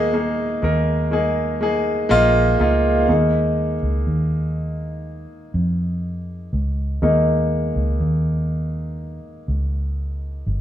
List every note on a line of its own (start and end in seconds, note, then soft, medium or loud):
0.00 0.59 D#2 medium
0.00 0.59 D#3 medium
0.00 0.13 G#3 loud
0.00 0.13 A#3 loud
0.00 0.14 D#4 loud
0.00 0.15 G#4 loud
0.13 0.60 G#3 medium
0.13 0.60 A#3 medium
0.13 0.60 D#4 medium
0.13 0.61 G#4 medium
0.62 2.06 D#2 medium
0.62 1.09 G#3 medium
0.62 1.09 A#3 medium
0.62 1.10 D#4 medium
0.62 1.10 A#4 medium
1.11 1.58 G#3 medium
1.11 1.59 A#3 medium
1.11 1.59 D#4 medium
1.11 1.59 G#4 medium
1.61 2.08 G#3 medium
1.61 2.08 A#3 medium
1.61 2.08 D#4 medium
1.61 2.09 G#4 medium
2.09 2.56 A#1 medium
2.09 2.56 G#3 loud
2.09 2.57 A#3 loud
2.09 2.57 D#4 medium
2.09 2.57 F4 loud
2.59 3.05 C#2 medium
2.59 3.06 G#3 medium
2.59 3.06 A#3 medium
2.59 3.06 D#4 medium
2.59 3.07 F4 medium
3.08 3.79 D#2 medium
3.08 3.74 G#3 medium
3.08 3.74 A#3 soft
3.08 3.74 D#4 medium
3.83 4.05 C#2 medium
4.07 5.26 D#2 medium
5.54 6.49 F2 medium
6.53 6.99 C#2 medium
7.02 7.72 D#2 medium
7.02 10.61 G#3 medium
7.02 10.61 A#3 medium
7.02 10.61 D#4 medium
7.76 7.99 C#2 medium
8.00 9.19 D#2 medium
9.48 10.42 C#2 medium
10.47 10.61 G1 medium